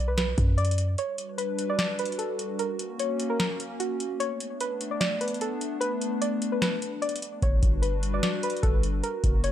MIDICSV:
0, 0, Header, 1, 5, 480
1, 0, Start_track
1, 0, Key_signature, 2, "minor"
1, 0, Tempo, 402685
1, 1169, Time_signature, 4, 2, 24, 8
1, 11347, End_track
2, 0, Start_track
2, 0, Title_t, "Synth pluck"
2, 0, Program_c, 0, 84
2, 93, Note_on_c, 0, 71, 72
2, 192, Note_off_c, 0, 71, 0
2, 210, Note_on_c, 0, 71, 90
2, 661, Note_off_c, 0, 71, 0
2, 686, Note_on_c, 0, 74, 94
2, 893, Note_off_c, 0, 74, 0
2, 1174, Note_on_c, 0, 73, 105
2, 1623, Note_off_c, 0, 73, 0
2, 1644, Note_on_c, 0, 71, 80
2, 1992, Note_off_c, 0, 71, 0
2, 2021, Note_on_c, 0, 74, 75
2, 2116, Note_off_c, 0, 74, 0
2, 2130, Note_on_c, 0, 74, 95
2, 2335, Note_off_c, 0, 74, 0
2, 2374, Note_on_c, 0, 71, 82
2, 2578, Note_off_c, 0, 71, 0
2, 2605, Note_on_c, 0, 69, 88
2, 2812, Note_off_c, 0, 69, 0
2, 3090, Note_on_c, 0, 70, 88
2, 3541, Note_off_c, 0, 70, 0
2, 3570, Note_on_c, 0, 73, 81
2, 3915, Note_off_c, 0, 73, 0
2, 3930, Note_on_c, 0, 70, 82
2, 4030, Note_off_c, 0, 70, 0
2, 4047, Note_on_c, 0, 70, 92
2, 4500, Note_off_c, 0, 70, 0
2, 4527, Note_on_c, 0, 66, 80
2, 4734, Note_off_c, 0, 66, 0
2, 5005, Note_on_c, 0, 73, 110
2, 5459, Note_off_c, 0, 73, 0
2, 5492, Note_on_c, 0, 71, 93
2, 5836, Note_off_c, 0, 71, 0
2, 5852, Note_on_c, 0, 74, 80
2, 5951, Note_off_c, 0, 74, 0
2, 5966, Note_on_c, 0, 74, 90
2, 6173, Note_off_c, 0, 74, 0
2, 6207, Note_on_c, 0, 71, 77
2, 6414, Note_off_c, 0, 71, 0
2, 6454, Note_on_c, 0, 69, 86
2, 6657, Note_off_c, 0, 69, 0
2, 6920, Note_on_c, 0, 71, 117
2, 7376, Note_off_c, 0, 71, 0
2, 7408, Note_on_c, 0, 74, 86
2, 7754, Note_off_c, 0, 74, 0
2, 7773, Note_on_c, 0, 71, 75
2, 7871, Note_off_c, 0, 71, 0
2, 7890, Note_on_c, 0, 71, 89
2, 8341, Note_off_c, 0, 71, 0
2, 8366, Note_on_c, 0, 74, 91
2, 8573, Note_off_c, 0, 74, 0
2, 8854, Note_on_c, 0, 73, 98
2, 9303, Note_off_c, 0, 73, 0
2, 9323, Note_on_c, 0, 71, 80
2, 9672, Note_off_c, 0, 71, 0
2, 9700, Note_on_c, 0, 74, 76
2, 9795, Note_off_c, 0, 74, 0
2, 9809, Note_on_c, 0, 74, 94
2, 10015, Note_off_c, 0, 74, 0
2, 10053, Note_on_c, 0, 71, 82
2, 10257, Note_off_c, 0, 71, 0
2, 10284, Note_on_c, 0, 69, 86
2, 10492, Note_off_c, 0, 69, 0
2, 10769, Note_on_c, 0, 70, 88
2, 11221, Note_off_c, 0, 70, 0
2, 11250, Note_on_c, 0, 73, 83
2, 11347, Note_off_c, 0, 73, 0
2, 11347, End_track
3, 0, Start_track
3, 0, Title_t, "Analog synth pad"
3, 0, Program_c, 1, 89
3, 1170, Note_on_c, 1, 55, 89
3, 1170, Note_on_c, 1, 62, 80
3, 1170, Note_on_c, 1, 66, 82
3, 1170, Note_on_c, 1, 71, 98
3, 3071, Note_off_c, 1, 55, 0
3, 3071, Note_off_c, 1, 62, 0
3, 3071, Note_off_c, 1, 71, 0
3, 3090, Note_on_c, 1, 58, 87
3, 3090, Note_on_c, 1, 61, 81
3, 4971, Note_off_c, 1, 66, 0
3, 4991, Note_off_c, 1, 58, 0
3, 4991, Note_off_c, 1, 61, 0
3, 5009, Note_on_c, 1, 57, 89
3, 5009, Note_on_c, 1, 59, 83
3, 5009, Note_on_c, 1, 62, 98
3, 8811, Note_off_c, 1, 57, 0
3, 8811, Note_off_c, 1, 59, 0
3, 8811, Note_off_c, 1, 62, 0
3, 8849, Note_on_c, 1, 55, 90
3, 8849, Note_on_c, 1, 71, 97
3, 8850, Note_on_c, 1, 62, 82
3, 8850, Note_on_c, 1, 66, 80
3, 10750, Note_off_c, 1, 55, 0
3, 10750, Note_off_c, 1, 71, 0
3, 10751, Note_off_c, 1, 62, 0
3, 10751, Note_off_c, 1, 66, 0
3, 10770, Note_on_c, 1, 61, 80
3, 10770, Note_on_c, 1, 66, 99
3, 10771, Note_on_c, 1, 58, 86
3, 11347, Note_off_c, 1, 58, 0
3, 11347, Note_off_c, 1, 61, 0
3, 11347, Note_off_c, 1, 66, 0
3, 11347, End_track
4, 0, Start_track
4, 0, Title_t, "808-style bass"
4, 0, Program_c, 2, 38
4, 0, Note_on_c, 2, 35, 100
4, 412, Note_off_c, 2, 35, 0
4, 450, Note_on_c, 2, 42, 102
4, 1141, Note_off_c, 2, 42, 0
4, 8850, Note_on_c, 2, 31, 112
4, 9080, Note_off_c, 2, 31, 0
4, 9091, Note_on_c, 2, 31, 105
4, 9782, Note_off_c, 2, 31, 0
4, 10290, Note_on_c, 2, 31, 105
4, 10751, Note_off_c, 2, 31, 0
4, 11011, Note_on_c, 2, 30, 104
4, 11347, Note_off_c, 2, 30, 0
4, 11347, End_track
5, 0, Start_track
5, 0, Title_t, "Drums"
5, 210, Note_on_c, 9, 38, 125
5, 210, Note_on_c, 9, 42, 77
5, 329, Note_off_c, 9, 38, 0
5, 329, Note_off_c, 9, 42, 0
5, 450, Note_on_c, 9, 36, 91
5, 450, Note_on_c, 9, 42, 78
5, 569, Note_off_c, 9, 36, 0
5, 569, Note_off_c, 9, 42, 0
5, 690, Note_on_c, 9, 42, 46
5, 770, Note_off_c, 9, 42, 0
5, 770, Note_on_c, 9, 42, 62
5, 850, Note_off_c, 9, 42, 0
5, 850, Note_on_c, 9, 42, 80
5, 930, Note_off_c, 9, 42, 0
5, 930, Note_on_c, 9, 42, 77
5, 1049, Note_off_c, 9, 42, 0
5, 1170, Note_on_c, 9, 42, 69
5, 1289, Note_off_c, 9, 42, 0
5, 1410, Note_on_c, 9, 42, 75
5, 1529, Note_off_c, 9, 42, 0
5, 1650, Note_on_c, 9, 42, 89
5, 1769, Note_off_c, 9, 42, 0
5, 1890, Note_on_c, 9, 42, 78
5, 2009, Note_off_c, 9, 42, 0
5, 2130, Note_on_c, 9, 38, 116
5, 2130, Note_on_c, 9, 42, 78
5, 2249, Note_off_c, 9, 38, 0
5, 2249, Note_off_c, 9, 42, 0
5, 2370, Note_on_c, 9, 42, 80
5, 2450, Note_off_c, 9, 42, 0
5, 2450, Note_on_c, 9, 42, 65
5, 2530, Note_off_c, 9, 42, 0
5, 2530, Note_on_c, 9, 42, 47
5, 2609, Note_off_c, 9, 42, 0
5, 2609, Note_on_c, 9, 42, 77
5, 2728, Note_off_c, 9, 42, 0
5, 2849, Note_on_c, 9, 42, 76
5, 2969, Note_off_c, 9, 42, 0
5, 3089, Note_on_c, 9, 42, 70
5, 3209, Note_off_c, 9, 42, 0
5, 3329, Note_on_c, 9, 42, 77
5, 3449, Note_off_c, 9, 42, 0
5, 3569, Note_on_c, 9, 42, 89
5, 3689, Note_off_c, 9, 42, 0
5, 3809, Note_on_c, 9, 42, 76
5, 3928, Note_off_c, 9, 42, 0
5, 4049, Note_on_c, 9, 38, 124
5, 4049, Note_on_c, 9, 42, 76
5, 4169, Note_off_c, 9, 38, 0
5, 4169, Note_off_c, 9, 42, 0
5, 4290, Note_on_c, 9, 42, 82
5, 4409, Note_off_c, 9, 42, 0
5, 4530, Note_on_c, 9, 42, 75
5, 4649, Note_off_c, 9, 42, 0
5, 4770, Note_on_c, 9, 42, 77
5, 4889, Note_off_c, 9, 42, 0
5, 5010, Note_on_c, 9, 42, 71
5, 5129, Note_off_c, 9, 42, 0
5, 5250, Note_on_c, 9, 42, 77
5, 5369, Note_off_c, 9, 42, 0
5, 5490, Note_on_c, 9, 42, 87
5, 5609, Note_off_c, 9, 42, 0
5, 5730, Note_on_c, 9, 42, 76
5, 5849, Note_off_c, 9, 42, 0
5, 5970, Note_on_c, 9, 38, 123
5, 5970, Note_on_c, 9, 42, 79
5, 6089, Note_off_c, 9, 38, 0
5, 6089, Note_off_c, 9, 42, 0
5, 6210, Note_on_c, 9, 42, 84
5, 6290, Note_off_c, 9, 42, 0
5, 6290, Note_on_c, 9, 42, 67
5, 6370, Note_off_c, 9, 42, 0
5, 6370, Note_on_c, 9, 42, 48
5, 6450, Note_off_c, 9, 42, 0
5, 6450, Note_on_c, 9, 42, 77
5, 6569, Note_off_c, 9, 42, 0
5, 6690, Note_on_c, 9, 42, 79
5, 6809, Note_off_c, 9, 42, 0
5, 6930, Note_on_c, 9, 42, 70
5, 7049, Note_off_c, 9, 42, 0
5, 7170, Note_on_c, 9, 42, 81
5, 7289, Note_off_c, 9, 42, 0
5, 7410, Note_on_c, 9, 42, 88
5, 7529, Note_off_c, 9, 42, 0
5, 7650, Note_on_c, 9, 42, 77
5, 7769, Note_off_c, 9, 42, 0
5, 7890, Note_on_c, 9, 38, 122
5, 7890, Note_on_c, 9, 42, 80
5, 8009, Note_off_c, 9, 38, 0
5, 8009, Note_off_c, 9, 42, 0
5, 8130, Note_on_c, 9, 42, 78
5, 8250, Note_off_c, 9, 42, 0
5, 8370, Note_on_c, 9, 42, 47
5, 8450, Note_off_c, 9, 42, 0
5, 8450, Note_on_c, 9, 42, 62
5, 8530, Note_off_c, 9, 42, 0
5, 8530, Note_on_c, 9, 42, 85
5, 8610, Note_off_c, 9, 42, 0
5, 8610, Note_on_c, 9, 42, 75
5, 8729, Note_off_c, 9, 42, 0
5, 8850, Note_on_c, 9, 36, 117
5, 8850, Note_on_c, 9, 42, 70
5, 8969, Note_off_c, 9, 36, 0
5, 8969, Note_off_c, 9, 42, 0
5, 9090, Note_on_c, 9, 42, 77
5, 9091, Note_on_c, 9, 36, 82
5, 9210, Note_off_c, 9, 36, 0
5, 9210, Note_off_c, 9, 42, 0
5, 9330, Note_on_c, 9, 42, 89
5, 9449, Note_off_c, 9, 42, 0
5, 9570, Note_on_c, 9, 42, 77
5, 9689, Note_off_c, 9, 42, 0
5, 9810, Note_on_c, 9, 38, 122
5, 9810, Note_on_c, 9, 42, 77
5, 9929, Note_off_c, 9, 38, 0
5, 9929, Note_off_c, 9, 42, 0
5, 10050, Note_on_c, 9, 42, 80
5, 10130, Note_off_c, 9, 42, 0
5, 10130, Note_on_c, 9, 42, 64
5, 10210, Note_off_c, 9, 42, 0
5, 10210, Note_on_c, 9, 42, 47
5, 10290, Note_off_c, 9, 42, 0
5, 10290, Note_on_c, 9, 36, 96
5, 10290, Note_on_c, 9, 42, 77
5, 10409, Note_off_c, 9, 42, 0
5, 10410, Note_off_c, 9, 36, 0
5, 10530, Note_on_c, 9, 42, 77
5, 10649, Note_off_c, 9, 42, 0
5, 10770, Note_on_c, 9, 42, 73
5, 10889, Note_off_c, 9, 42, 0
5, 11010, Note_on_c, 9, 42, 78
5, 11011, Note_on_c, 9, 36, 81
5, 11129, Note_off_c, 9, 42, 0
5, 11130, Note_off_c, 9, 36, 0
5, 11250, Note_on_c, 9, 42, 90
5, 11347, Note_off_c, 9, 42, 0
5, 11347, End_track
0, 0, End_of_file